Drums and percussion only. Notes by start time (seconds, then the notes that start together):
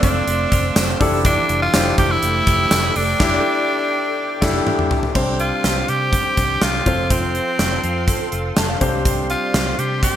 0.03 kick, closed hi-hat
0.28 closed hi-hat
0.52 kick, closed hi-hat
0.76 snare, closed hi-hat, tambourine
1.01 kick, open hi-hat
1.25 kick, closed hi-hat
1.49 closed hi-hat
1.74 snare, closed hi-hat, tambourine
1.98 kick, closed hi-hat
2.23 closed hi-hat
2.47 kick, closed hi-hat
2.71 snare, closed hi-hat, tambourine
2.96 open hi-hat
3.20 kick, snare, crash
4.42 kick, snare, crash
4.67 mid tom
4.79 mid tom
4.91 floor tom
5.03 floor tom
5.15 kick, crash
5.40 closed hi-hat
5.64 snare, closed hi-hat
5.88 closed hi-hat
6.13 kick, closed hi-hat
6.37 kick, closed hi-hat
6.61 snare, closed hi-hat
6.86 kick, closed hi-hat
7.10 kick, closed hi-hat
7.35 closed hi-hat
7.59 snare, closed hi-hat
7.84 closed hi-hat
8.08 kick, closed hi-hat
8.32 closed hi-hat
8.56 snare, closed hi-hat
8.81 kick, closed hi-hat
9.05 kick, closed hi-hat
9.30 closed hi-hat
9.54 snare, closed hi-hat
9.79 closed hi-hat
10.03 kick, closed hi-hat